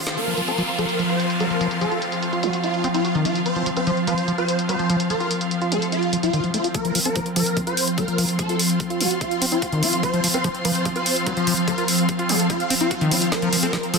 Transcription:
Already playing: ambient pad F3, string section C4 F4 F5 C6
0.07 snare, closed hi-hat
0.17 ambient pad F3, digital synth lead A#4, closed hi-hat, downlifter
0.27 acid bass F3, closed hi-hat
0.37 acid bass F3, closed hi-hat
0.48 acid bass C4, digital synth lead A#4, closed hi-hat
0.58 acid bass F3, closed hi-hat
0.68 closed hi-hat
0.79 acid bass F3, digital synth lead A#4, closed hi-hat
0.89 closed hi-hat
0.99 acid bass F3, closed hi-hat
1.09 acid bass F4, digital synth lead C5, closed hi-hat
1.20 closed hi-hat
1.30 closed hi-hat
1.40 acid bass F#3, digital synth lead A#4, closed hi-hat
1.50 acid bass F3, closed hi-hat
1.61 acid bass F3, closed hi-hat
1.71 closed hi-hat
1.81 acid bass F3, digital synth lead A4, closed hi-hat
1.92 acid bass F4, closed hi-hat
2.02 closed hi-hat
2.12 closed hi-hat
2.22 closed hi-hat
2.33 acid bass F4, closed hi-hat
2.43 acid bass F3, digital synth lead F#4, closed hi-hat
2.53 closed hi-hat
2.64 digital synth lead F4, closed hi-hat
2.74 closed hi-hat
2.84 acid bass C4, closed hi-hat
2.94 acid bass C4, digital synth lead F4, closed hi-hat
3.05 acid bass F#4, closed hi-hat
3.15 acid bass D#3, closed hi-hat
3.25 digital synth lead F4, acid bass F#4, closed hi-hat
3.35 closed hi-hat
3.46 digital synth lead C5, closed hi-hat
3.56 acid bass F3, closed hi-hat
3.66 acid bass F3, closed hi-hat
3.77 acid bass C4, digital synth lead C5, closed hi-hat
3.87 acid bass F3, closed hi-hat
3.97 closed hi-hat
4.07 acid bass F3, digital synth lead C5, closed hi-hat
4.18 closed hi-hat
4.28 acid bass F3, closed hi-hat
4.38 acid bass F4, digital synth lead C5, closed hi-hat
4.48 closed hi-hat
4.59 closed hi-hat
4.69 acid bass F#3, digital synth lead C5, closed hi-hat
4.79 acid bass F3, closed hi-hat
4.90 acid bass F3, closed hi-hat
5.00 closed hi-hat
5.10 acid bass F3, digital synth lead A#4, closed hi-hat
5.20 acid bass F4, closed hi-hat
5.31 closed hi-hat
5.41 closed hi-hat
5.51 closed hi-hat
5.61 acid bass F4, closed hi-hat
5.72 acid bass F3, digital synth lead A4, closed hi-hat
5.82 closed hi-hat
5.92 digital synth lead F4, closed hi-hat
6.03 closed hi-hat
6.13 acid bass F3, closed hi-hat
6.23 acid bass F3, digital synth lead F4, closed hi-hat
6.33 acid bass D#3, closed hi-hat
6.44 acid bass F3, closed hi-hat
6.54 acid bass A3, digital synth lead F4, closed hi-hat
6.64 acid bass F4, closed hi-hat
6.74 ambient pad F3, string section C4, digital synth lead A#4, kick, closed hi-hat
6.84 acid bass F3, string section F4, closed hi-hat
6.95 acid bass F3, open hi-hat
7.05 acid bass C4, digital synth lead A#4, closed hi-hat
7.16 acid bass F3, kick, closed hi-hat
7.26 closed hi-hat
7.36 acid bass F3, digital synth lead A#4, open hi-hat
7.46 closed hi-hat
7.56 acid bass F3, string section F5, kick, closed hi-hat
7.61 string section C6
7.67 acid bass F4, digital synth lead C5, closed hi-hat
7.77 open hi-hat
7.88 closed hi-hat
7.98 acid bass F#3, digital synth lead A#4, kick, closed hi-hat
8.08 acid bass F3, closed hi-hat
8.18 acid bass F3, open hi-hat
8.29 closed hi-hat
8.39 acid bass F3, digital synth lead A4, kick, closed hi-hat
8.49 acid bass F4, closed hi-hat
8.59 open hi-hat
8.70 closed hi-hat
8.80 kick, closed hi-hat
8.90 acid bass F4, closed hi-hat
9.01 acid bass F3, digital synth lead F#4, open hi-hat
9.11 closed hi-hat
9.21 digital synth lead F4, kick, closed hi-hat
9.31 closed hi-hat
9.42 acid bass C4, open hi-hat
9.52 acid bass C4, digital synth lead F4, closed hi-hat
9.62 acid bass F#4, kick, closed hi-hat
9.72 acid bass D#3, closed hi-hat
9.83 digital synth lead F4, acid bass F#4, open hi-hat
9.93 closed hi-hat
10.03 digital synth lead C5, kick, closed hi-hat
10.14 acid bass F3, closed hi-hat
10.24 acid bass F3, open hi-hat
10.34 acid bass C4, digital synth lead C5, closed hi-hat
10.44 acid bass F3, kick, closed hi-hat
10.55 closed hi-hat
10.65 acid bass F3, digital synth lead C5, open hi-hat
10.75 closed hi-hat
10.85 acid bass F3, kick, closed hi-hat
10.96 acid bass F4, digital synth lead C5, closed hi-hat
11.06 open hi-hat
11.16 closed hi-hat
11.27 acid bass F#3, digital synth lead C5, kick, closed hi-hat
11.37 acid bass F3, closed hi-hat
11.47 acid bass F3, open hi-hat
11.57 closed hi-hat
11.68 acid bass F3, digital synth lead A#4, kick, closed hi-hat
11.78 acid bass F4, closed hi-hat
11.88 open hi-hat
11.98 closed hi-hat
12.09 kick, closed hi-hat
12.19 acid bass F4, closed hi-hat
12.29 acid bass F3, digital synth lead A4, open hi-hat
12.40 closed hi-hat
12.50 digital synth lead F4, kick, closed hi-hat
12.60 closed hi-hat
12.70 acid bass C4, open hi-hat
12.81 acid bass C4, digital synth lead F4, closed hi-hat
12.91 acid bass F#4, kick, closed hi-hat
13.01 acid bass D#3, closed hi-hat
13.11 digital synth lead F4, acid bass F#4, open hi-hat
13.22 closed hi-hat
13.32 digital synth lead A#4, kick, snare, closed hi-hat
13.42 acid bass F3, closed hi-hat
13.53 acid bass F3, open hi-hat
13.63 acid bass C4, digital synth lead A#4, closed hi-hat
13.73 acid bass F3, kick, snare, closed hi-hat
13.83 closed hi-hat
13.94 acid bass F3, digital synth lead A#4, open hi-hat

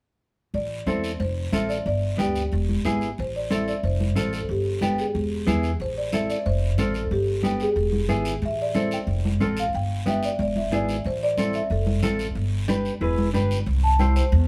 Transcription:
0.54 upright bass A1, marimba D5, long guiro
0.86 upright bass E2, clean electric guitar C4 E4 A4, marimba C5, high conga, short guiro
1.04 short guiro
1.20 upright bass F1, marimba C5, long guiro
1.52 upright bass A1, clean electric guitar C4 F4 A4, marimba E5, high conga, short guiro
1.69 marimba D5, short guiro
1.86 upright bass G1, marimba D5, long guiro
2.18 upright bass D2, clean electric guitar B3 D4 G4, marimba G4, high conga, short guiro
2.35 short guiro
2.52 upright bass E1, long guiro
2.69 high conga
2.85 upright bass G#1, clean electric guitar B3 E4 G#4, high conga, short guiro
3.01 short guiro
3.18 upright bass A1, marimba C5, long guiro
3.36 marimba D5
3.50 clean electric guitar C4 E4 A4, marimba E5, high conga, short guiro
3.68 marimba D5, short guiro
3.83 upright bass F1, marimba C5, long guiro
4.00 high conga
4.16 upright bass A1, clean electric guitar C4 F4 A4, marimba C5, high conga, short guiro
4.33 marimba A4, short guiro
4.49 upright bass G1, marimba G4, long guiro
4.81 clean electric guitar B3 D4 G4, high conga, short guiro
4.98 marimba G#4, short guiro
5.15 upright bass E1, long guiro
5.47 upright bass E2, clean electric guitar B3 E4 G#4, high conga, short guiro
5.63 short guiro
5.80 upright bass A1, marimba C5, long guiro
5.98 marimba D5
6.12 clean electric guitar C4 E4 A4, marimba E5, high conga, short guiro
6.30 marimba D5, short guiro
6.46 upright bass F1, marimba C5, long guiro
6.78 upright bass A1, clean electric guitar C4 F4 A4, marimba C5, high conga, short guiro
6.94 marimba A4, short guiro
7.11 upright bass G1, marimba G4, long guiro
7.43 clean electric guitar B3 D4 G4, high conga, short guiro
7.60 marimba G#4, short guiro
7.76 upright bass E1, long guiro
7.92 high conga
8.09 upright bass G#1, clean electric guitar B3 E4 G#4, high conga, short guiro
8.25 short guiro
8.42 upright bass A1, marimba E5, long guiro
8.62 marimba D5
8.74 clean electric guitar C4 E4 A4, marimba C5, high conga, short guiro
8.91 marimba G5, short guiro
9.07 upright bass F1, long guiro
9.25 high conga
9.40 upright bass A1, clean electric guitar C4 F4 A4, high conga, short guiro
9.57 marimba F5, short guiro
9.73 upright bass G1, marimba G5, long guiro
10.06 clean electric guitar B3 D4 G4, marimba E5, high conga, short guiro
10.23 marimba D5, short guiro
10.39 upright bass E1, marimba D5, long guiro
10.56 marimba E5, high conga
10.72 upright bass G#1, clean electric guitar B3 E4 G#4, marimba D5, high conga, short guiro
10.89 short guiro
11.04 upright bass A1, marimba C5, long guiro
11.23 marimba D5
11.37 clean electric guitar C4 E4 A4, high conga, short guiro
11.53 marimba E5, short guiro
11.70 upright bass F1, marimba A4, long guiro
11.87 high conga
12.03 upright bass A1, clean electric guitar C4 F4 A4, high conga, short guiro
12.19 short guiro
12.35 upright bass G1, long guiro
12.68 clean electric guitar D4 G4 B4, high conga, short guiro
12.85 short guiro
13.01 upright bass E1, clean electric guitar E4 G#4 B4, long guiro
13.18 high conga
13.33 upright bass G1, clean electric guitar D4 G4 B4, high conga, short guiro
13.51 short guiro
13.66 upright bass C2, long guiro
13.84 marimba A5
13.99 clean electric guitar E4 G4 C5, marimba G5, high conga, short guiro
14.16 marimba C5, short guiro
14.32 upright bass E2, long guiro

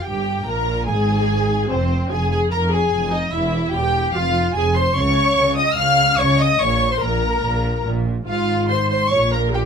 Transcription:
0.04 double bass section G1, cello section G2, viola section G4, violin section G4 G5
0.46 double bass section A#1, cello section A#2, violin section A#4 A#5, viola section A#4
0.86 double bass section G#1, cello section G#2, viola section G#4, violin section G#4 G#5
1.69 double bass section F1, cello section F2, viola section C4, violin section C4 C5
2.10 double bass section F1, cello section F2, viola section G#4, violin section G#4 G#5
2.31 viola section G#4, violin section G#4 G#5
2.51 double bass section F1, cello section F2, viola section A#4, violin section A#4 A#5
2.71 violin section G#4 G#5, viola section G#4
2.92 double bass section F1, cello section F2
3.12 viola section D#4, violin section D#4 D#5
3.31 double bass section E1, cello section E2, violin section E4 E5, viola section E4
3.72 double bass section E1, cello section E2, viola section G4, violin section G4 G5
4.14 double bass section F1, cello section F2, viola section F4, violin section F4 F5
4.55 double bass section F1, cello section F2, violin section G#4 G#5, viola section G#4
4.75 viola section C5, violin section C5 C6
4.95 double bass section C#2, cello section C#3, violin section C#5 C#6, viola section C#5
5.37 double bass section C#2, cello section C#3
5.57 violin section D#5 D#6, viola section D#5
5.77 double bass section C#2, cello section C#3, violin section F5 F6, viola section F5
6.18 double bass section C#2, cello section C#3, viola section C#5, violin section C#5 C#6
6.39 violin section D#5 D#6, viola section D#5
6.60 double bass section A#1, cello section A#2, violin section C#5 C#6, viola section C#5
6.91 violin section C5 C6, viola section C5
7.01 double bass section A#1, cello section A#2, violin section A#4 A#5, viola section A#4
7.43 double bass section A#1, cello section A#2
7.85 double bass section A#1, cello section A#2
8.27 double bass section G#1, cello section G#2, violin section F4 F5, viola section F4
8.69 viola section C5, violin section C5 C6
8.90 viola section C5, violin section C5 C6
9.10 double bass section A#1, cello section A#2, viola section C#5, violin section C#5 C#6
9.32 viola section A#4, violin section A#4 A#5
9.54 viola section G4, violin section G4 G5

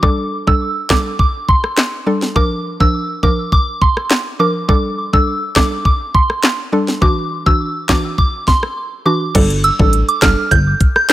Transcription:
0.03 synth pluck G3 D4 A4, synth bell D6, kick
0.47 synth pluck G3 D4 A4, synth bell E6, kick
0.90 synth pluck G3 D4 A4, synth bell D6, kick, snare, clap
1.19 synth bell D6, kick
1.49 synth bell C6, kick
1.64 cross-stick
1.77 snare, clap
2.06 synth pluck G3 D4 A4
2.22 snare
2.36 synth pluck F3 D4 A#4, synth bell D6, kick
2.80 synth pluck F3 D4 A#4, synth bell E6, kick
3.23 synth pluck F3 D4 A#4, synth bell D6, kick
3.52 synth bell D6, kick
3.82 synth bell C6, kick
3.97 cross-stick
4.11 snare, clap
4.39 synth pluck F3 D4 A#4, synth bell D6
4.69 synth pluck G3 D4 A4, synth bell D6, kick
5.13 synth pluck G3 D4 A4, synth bell E6, kick
5.56 synth pluck G3 D4 A4, synth bell D6, kick, snare, clap
5.85 synth bell D6, kick
6.15 synth bell C6, kick
6.30 cross-stick
6.44 snare, clap
6.72 synth pluck G3 D4 A4
6.88 snare
7.01 synth pluck E3 D4 F#4, synth bell D6, kick
7.46 synth pluck E3 D4 F#4, synth bell E6, kick
7.89 synth pluck E3 D4 F#4, synth bell D6, kick, snare, clap
8.18 synth bell D6, kick
8.48 synth bell C6, kick, snare
8.63 cross-stick
9.05 synth pluck E3 D4 F#4, synth bell D6
9.35 analog synth bass G1, synth pluck G3 D4 A4, kick, closed hi-hat, crash
9.50 closed hi-hat
9.64 synth bell E6, closed hi-hat
9.79 analog synth bass A1, synth pluck G3 D4 A4, kick
9.93 closed hi-hat
10.09 synth bell D6, closed hi-hat
10.22 analog synth bass G1, synth pluck G3 D4 A4, synth bell F6, kick, snare, clap, closed hi-hat
10.51 analog synth bass G1, synth bell G6, kick, closed hi-hat
10.81 kick, closed hi-hat
10.96 synth bell G6, cross-stick
11.09 synth bell G6, snare

